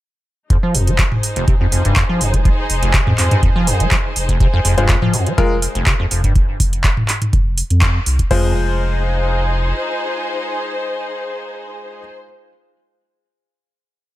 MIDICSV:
0, 0, Header, 1, 6, 480
1, 0, Start_track
1, 0, Key_signature, -4, "minor"
1, 0, Tempo, 487805
1, 495, Time_signature, 4, 2, 24, 8
1, 13927, End_track
2, 0, Start_track
2, 0, Title_t, "String section"
2, 0, Program_c, 0, 48
2, 492, Note_on_c, 0, 63, 72
2, 793, Note_on_c, 0, 72, 82
2, 928, Note_on_c, 0, 68, 74
2, 6253, Note_off_c, 0, 63, 0
2, 6253, Note_off_c, 0, 68, 0
2, 6253, Note_off_c, 0, 72, 0
2, 8174, Note_on_c, 0, 63, 77
2, 8249, Note_on_c, 0, 68, 77
2, 8324, Note_on_c, 0, 72, 77
2, 11793, Note_off_c, 0, 63, 0
2, 11868, Note_off_c, 0, 68, 0
2, 11943, Note_off_c, 0, 72, 0
2, 13927, End_track
3, 0, Start_track
3, 0, Title_t, "Grand piano"
3, 0, Program_c, 1, 0
3, 4700, Note_on_c, 1, 56, 75
3, 4700, Note_on_c, 1, 65, 71
3, 4701, Note_on_c, 1, 72, 83
3, 4837, Note_off_c, 1, 56, 0
3, 4837, Note_off_c, 1, 65, 0
3, 4837, Note_off_c, 1, 72, 0
3, 5293, Note_on_c, 1, 56, 97
3, 5293, Note_on_c, 1, 65, 90
3, 5293, Note_on_c, 1, 70, 109
3, 5441, Note_off_c, 1, 56, 0
3, 5441, Note_off_c, 1, 65, 0
3, 5441, Note_off_c, 1, 70, 0
3, 8175, Note_on_c, 1, 56, 85
3, 8175, Note_on_c, 1, 65, 79
3, 8175, Note_on_c, 1, 72, 94
3, 11794, Note_off_c, 1, 56, 0
3, 11794, Note_off_c, 1, 65, 0
3, 11794, Note_off_c, 1, 72, 0
3, 13927, End_track
4, 0, Start_track
4, 0, Title_t, "Acid bass"
4, 0, Program_c, 2, 38
4, 494, Note_on_c, 2, 41, 101
4, 564, Note_off_c, 2, 41, 0
4, 620, Note_on_c, 2, 53, 104
4, 733, Note_on_c, 2, 41, 74
4, 748, Note_off_c, 2, 53, 0
4, 861, Note_on_c, 2, 56, 77
4, 876, Note_off_c, 2, 41, 0
4, 923, Note_off_c, 2, 56, 0
4, 974, Note_on_c, 2, 53, 78
4, 1016, Note_off_c, 2, 53, 0
4, 1340, Note_on_c, 2, 29, 101
4, 1434, Note_off_c, 2, 29, 0
4, 1453, Note_on_c, 2, 48, 81
4, 1524, Note_off_c, 2, 48, 0
4, 1580, Note_on_c, 2, 41, 101
4, 1643, Note_off_c, 2, 41, 0
4, 1694, Note_on_c, 2, 41, 75
4, 1799, Note_off_c, 2, 41, 0
4, 1820, Note_on_c, 2, 43, 72
4, 1914, Note_off_c, 2, 43, 0
4, 2059, Note_on_c, 2, 53, 100
4, 2172, Note_on_c, 2, 41, 75
4, 2187, Note_off_c, 2, 53, 0
4, 2299, Note_on_c, 2, 56, 73
4, 2314, Note_off_c, 2, 41, 0
4, 2362, Note_off_c, 2, 56, 0
4, 2413, Note_on_c, 2, 53, 80
4, 2455, Note_off_c, 2, 53, 0
4, 2779, Note_on_c, 2, 29, 103
4, 2874, Note_off_c, 2, 29, 0
4, 2893, Note_on_c, 2, 48, 77
4, 2963, Note_off_c, 2, 48, 0
4, 3020, Note_on_c, 2, 41, 100
4, 3083, Note_off_c, 2, 41, 0
4, 3133, Note_on_c, 2, 41, 76
4, 3238, Note_off_c, 2, 41, 0
4, 3260, Note_on_c, 2, 43, 79
4, 3354, Note_off_c, 2, 43, 0
4, 3374, Note_on_c, 2, 41, 100
4, 3444, Note_off_c, 2, 41, 0
4, 3500, Note_on_c, 2, 53, 106
4, 3614, Note_on_c, 2, 41, 76
4, 3629, Note_off_c, 2, 53, 0
4, 3741, Note_on_c, 2, 56, 74
4, 3755, Note_off_c, 2, 41, 0
4, 3803, Note_off_c, 2, 56, 0
4, 3854, Note_on_c, 2, 53, 82
4, 3896, Note_off_c, 2, 53, 0
4, 4220, Note_on_c, 2, 29, 100
4, 4314, Note_off_c, 2, 29, 0
4, 4334, Note_on_c, 2, 48, 83
4, 4404, Note_off_c, 2, 48, 0
4, 4461, Note_on_c, 2, 41, 100
4, 4523, Note_off_c, 2, 41, 0
4, 4575, Note_on_c, 2, 41, 76
4, 4679, Note_off_c, 2, 41, 0
4, 4701, Note_on_c, 2, 43, 75
4, 4794, Note_off_c, 2, 43, 0
4, 4814, Note_on_c, 2, 41, 97
4, 4884, Note_off_c, 2, 41, 0
4, 4941, Note_on_c, 2, 53, 103
4, 5053, Note_on_c, 2, 41, 79
4, 5068, Note_off_c, 2, 53, 0
4, 5180, Note_on_c, 2, 56, 78
4, 5195, Note_off_c, 2, 41, 0
4, 5243, Note_off_c, 2, 56, 0
4, 5293, Note_on_c, 2, 53, 82
4, 5336, Note_off_c, 2, 53, 0
4, 5661, Note_on_c, 2, 29, 99
4, 5754, Note_off_c, 2, 29, 0
4, 5775, Note_on_c, 2, 48, 86
4, 5844, Note_off_c, 2, 48, 0
4, 5901, Note_on_c, 2, 41, 101
4, 5964, Note_off_c, 2, 41, 0
4, 6014, Note_on_c, 2, 41, 76
4, 6119, Note_off_c, 2, 41, 0
4, 6141, Note_on_c, 2, 43, 77
4, 6235, Note_off_c, 2, 43, 0
4, 8175, Note_on_c, 2, 41, 93
4, 8398, Note_off_c, 2, 41, 0
4, 13927, End_track
5, 0, Start_track
5, 0, Title_t, "Sub bass"
5, 0, Program_c, 3, 38
5, 734, Note_on_c, 3, 29, 97
5, 1023, Note_off_c, 3, 29, 0
5, 1100, Note_on_c, 3, 29, 97
5, 1170, Note_off_c, 3, 29, 0
5, 1454, Note_on_c, 3, 29, 89
5, 1743, Note_off_c, 3, 29, 0
5, 1821, Note_on_c, 3, 29, 83
5, 1891, Note_off_c, 3, 29, 0
5, 2175, Note_on_c, 3, 29, 96
5, 2463, Note_off_c, 3, 29, 0
5, 2654, Note_on_c, 3, 29, 96
5, 2943, Note_off_c, 3, 29, 0
5, 3020, Note_on_c, 3, 29, 99
5, 3090, Note_off_c, 3, 29, 0
5, 3374, Note_on_c, 3, 29, 90
5, 3663, Note_off_c, 3, 29, 0
5, 3740, Note_on_c, 3, 29, 84
5, 3810, Note_off_c, 3, 29, 0
5, 4094, Note_on_c, 3, 29, 92
5, 4383, Note_off_c, 3, 29, 0
5, 4573, Note_on_c, 3, 29, 98
5, 4862, Note_off_c, 3, 29, 0
5, 4940, Note_on_c, 3, 29, 99
5, 5010, Note_off_c, 3, 29, 0
5, 5294, Note_on_c, 3, 29, 92
5, 5583, Note_off_c, 3, 29, 0
5, 5660, Note_on_c, 3, 29, 85
5, 5730, Note_off_c, 3, 29, 0
5, 6014, Note_on_c, 3, 29, 99
5, 6303, Note_off_c, 3, 29, 0
5, 6494, Note_on_c, 3, 29, 102
5, 6783, Note_off_c, 3, 29, 0
5, 6860, Note_on_c, 3, 29, 97
5, 6930, Note_off_c, 3, 29, 0
5, 7214, Note_on_c, 3, 29, 90
5, 7503, Note_off_c, 3, 29, 0
5, 7581, Note_on_c, 3, 41, 91
5, 7864, Note_off_c, 3, 41, 0
5, 7934, Note_on_c, 3, 36, 96
5, 8087, Note_off_c, 3, 36, 0
5, 8175, Note_on_c, 3, 29, 96
5, 9575, Note_off_c, 3, 29, 0
5, 13927, End_track
6, 0, Start_track
6, 0, Title_t, "Drums"
6, 494, Note_on_c, 9, 36, 113
6, 494, Note_on_c, 9, 42, 52
6, 592, Note_off_c, 9, 42, 0
6, 593, Note_off_c, 9, 36, 0
6, 733, Note_on_c, 9, 46, 104
6, 832, Note_off_c, 9, 46, 0
6, 861, Note_on_c, 9, 42, 65
6, 959, Note_off_c, 9, 42, 0
6, 970, Note_on_c, 9, 39, 122
6, 974, Note_on_c, 9, 36, 112
6, 974, Note_on_c, 9, 42, 52
6, 1068, Note_off_c, 9, 39, 0
6, 1072, Note_off_c, 9, 42, 0
6, 1073, Note_off_c, 9, 36, 0
6, 1100, Note_on_c, 9, 45, 91
6, 1199, Note_off_c, 9, 45, 0
6, 1213, Note_on_c, 9, 46, 103
6, 1311, Note_off_c, 9, 46, 0
6, 1340, Note_on_c, 9, 42, 66
6, 1439, Note_off_c, 9, 42, 0
6, 1453, Note_on_c, 9, 42, 52
6, 1454, Note_on_c, 9, 36, 113
6, 1552, Note_off_c, 9, 42, 0
6, 1553, Note_off_c, 9, 36, 0
6, 1694, Note_on_c, 9, 46, 104
6, 1792, Note_off_c, 9, 46, 0
6, 1820, Note_on_c, 9, 42, 67
6, 1919, Note_off_c, 9, 42, 0
6, 1929, Note_on_c, 9, 39, 120
6, 1933, Note_on_c, 9, 42, 53
6, 1934, Note_on_c, 9, 36, 114
6, 2027, Note_off_c, 9, 39, 0
6, 2032, Note_off_c, 9, 42, 0
6, 2033, Note_off_c, 9, 36, 0
6, 2173, Note_on_c, 9, 46, 102
6, 2272, Note_off_c, 9, 46, 0
6, 2300, Note_on_c, 9, 42, 66
6, 2301, Note_on_c, 9, 36, 59
6, 2399, Note_off_c, 9, 36, 0
6, 2399, Note_off_c, 9, 42, 0
6, 2414, Note_on_c, 9, 36, 120
6, 2414, Note_on_c, 9, 42, 52
6, 2512, Note_off_c, 9, 36, 0
6, 2513, Note_off_c, 9, 42, 0
6, 2653, Note_on_c, 9, 46, 105
6, 2752, Note_off_c, 9, 46, 0
6, 2781, Note_on_c, 9, 42, 64
6, 2879, Note_off_c, 9, 42, 0
6, 2889, Note_on_c, 9, 39, 122
6, 2894, Note_on_c, 9, 36, 121
6, 2894, Note_on_c, 9, 42, 52
6, 2988, Note_off_c, 9, 39, 0
6, 2992, Note_off_c, 9, 36, 0
6, 2992, Note_off_c, 9, 42, 0
6, 3021, Note_on_c, 9, 45, 94
6, 3119, Note_off_c, 9, 45, 0
6, 3129, Note_on_c, 9, 39, 64
6, 3134, Note_on_c, 9, 46, 107
6, 3228, Note_off_c, 9, 39, 0
6, 3232, Note_off_c, 9, 46, 0
6, 3261, Note_on_c, 9, 42, 62
6, 3261, Note_on_c, 9, 45, 82
6, 3359, Note_off_c, 9, 42, 0
6, 3359, Note_off_c, 9, 45, 0
6, 3374, Note_on_c, 9, 36, 120
6, 3374, Note_on_c, 9, 42, 52
6, 3472, Note_off_c, 9, 36, 0
6, 3472, Note_off_c, 9, 42, 0
6, 3614, Note_on_c, 9, 46, 107
6, 3712, Note_off_c, 9, 46, 0
6, 3741, Note_on_c, 9, 42, 65
6, 3839, Note_off_c, 9, 42, 0
6, 3850, Note_on_c, 9, 39, 116
6, 3854, Note_on_c, 9, 36, 119
6, 3854, Note_on_c, 9, 42, 53
6, 3948, Note_off_c, 9, 39, 0
6, 3952, Note_off_c, 9, 36, 0
6, 3952, Note_off_c, 9, 42, 0
6, 4094, Note_on_c, 9, 46, 106
6, 4192, Note_off_c, 9, 46, 0
6, 4221, Note_on_c, 9, 36, 64
6, 4221, Note_on_c, 9, 42, 65
6, 4319, Note_off_c, 9, 36, 0
6, 4320, Note_off_c, 9, 42, 0
6, 4334, Note_on_c, 9, 36, 125
6, 4334, Note_on_c, 9, 42, 49
6, 4432, Note_off_c, 9, 36, 0
6, 4433, Note_off_c, 9, 42, 0
6, 4574, Note_on_c, 9, 46, 107
6, 4672, Note_off_c, 9, 46, 0
6, 4701, Note_on_c, 9, 42, 62
6, 4799, Note_off_c, 9, 42, 0
6, 4809, Note_on_c, 9, 39, 121
6, 4813, Note_on_c, 9, 42, 52
6, 4814, Note_on_c, 9, 36, 116
6, 4907, Note_off_c, 9, 39, 0
6, 4912, Note_off_c, 9, 36, 0
6, 4912, Note_off_c, 9, 42, 0
6, 4940, Note_on_c, 9, 45, 94
6, 5038, Note_off_c, 9, 45, 0
6, 5053, Note_on_c, 9, 46, 109
6, 5151, Note_off_c, 9, 46, 0
6, 5181, Note_on_c, 9, 42, 61
6, 5279, Note_off_c, 9, 42, 0
6, 5294, Note_on_c, 9, 36, 120
6, 5294, Note_on_c, 9, 42, 52
6, 5392, Note_off_c, 9, 36, 0
6, 5392, Note_off_c, 9, 42, 0
6, 5534, Note_on_c, 9, 46, 110
6, 5632, Note_off_c, 9, 46, 0
6, 5661, Note_on_c, 9, 42, 62
6, 5759, Note_off_c, 9, 42, 0
6, 5770, Note_on_c, 9, 39, 121
6, 5774, Note_on_c, 9, 36, 126
6, 5774, Note_on_c, 9, 42, 49
6, 5868, Note_off_c, 9, 39, 0
6, 5872, Note_off_c, 9, 42, 0
6, 5873, Note_off_c, 9, 36, 0
6, 6013, Note_on_c, 9, 46, 108
6, 6111, Note_off_c, 9, 46, 0
6, 6140, Note_on_c, 9, 42, 62
6, 6141, Note_on_c, 9, 36, 64
6, 6239, Note_off_c, 9, 36, 0
6, 6239, Note_off_c, 9, 42, 0
6, 6253, Note_on_c, 9, 42, 51
6, 6254, Note_on_c, 9, 36, 119
6, 6352, Note_off_c, 9, 36, 0
6, 6352, Note_off_c, 9, 42, 0
6, 6494, Note_on_c, 9, 36, 88
6, 6494, Note_on_c, 9, 46, 106
6, 6593, Note_off_c, 9, 36, 0
6, 6593, Note_off_c, 9, 46, 0
6, 6622, Note_on_c, 9, 42, 61
6, 6720, Note_off_c, 9, 42, 0
6, 6730, Note_on_c, 9, 39, 115
6, 6734, Note_on_c, 9, 36, 117
6, 6734, Note_on_c, 9, 42, 51
6, 6828, Note_off_c, 9, 39, 0
6, 6833, Note_off_c, 9, 36, 0
6, 6833, Note_off_c, 9, 42, 0
6, 6860, Note_on_c, 9, 45, 90
6, 6959, Note_off_c, 9, 45, 0
6, 6970, Note_on_c, 9, 39, 59
6, 6975, Note_on_c, 9, 46, 113
6, 7069, Note_off_c, 9, 39, 0
6, 7073, Note_off_c, 9, 46, 0
6, 7101, Note_on_c, 9, 42, 60
6, 7101, Note_on_c, 9, 45, 82
6, 7199, Note_off_c, 9, 42, 0
6, 7199, Note_off_c, 9, 45, 0
6, 7214, Note_on_c, 9, 42, 52
6, 7215, Note_on_c, 9, 36, 122
6, 7312, Note_off_c, 9, 42, 0
6, 7313, Note_off_c, 9, 36, 0
6, 7454, Note_on_c, 9, 46, 108
6, 7553, Note_off_c, 9, 46, 0
6, 7581, Note_on_c, 9, 42, 61
6, 7679, Note_off_c, 9, 42, 0
6, 7690, Note_on_c, 9, 39, 112
6, 7694, Note_on_c, 9, 42, 50
6, 7695, Note_on_c, 9, 36, 126
6, 7788, Note_off_c, 9, 39, 0
6, 7793, Note_off_c, 9, 36, 0
6, 7793, Note_off_c, 9, 42, 0
6, 7934, Note_on_c, 9, 46, 108
6, 8033, Note_off_c, 9, 46, 0
6, 8061, Note_on_c, 9, 36, 62
6, 8061, Note_on_c, 9, 42, 62
6, 8160, Note_off_c, 9, 36, 0
6, 8160, Note_off_c, 9, 42, 0
6, 8174, Note_on_c, 9, 49, 85
6, 8175, Note_on_c, 9, 36, 110
6, 8273, Note_off_c, 9, 36, 0
6, 8273, Note_off_c, 9, 49, 0
6, 13927, End_track
0, 0, End_of_file